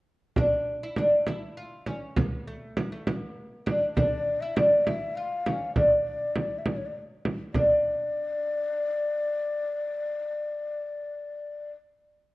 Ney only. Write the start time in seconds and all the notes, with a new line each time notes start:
3.96 D5
4.41 E5
4.56 D5
4.85 E5
5.15 F5
5.75 D5
6.58 E5
6.68 D5
6.77 C#5
6.86 D5
7.54 D5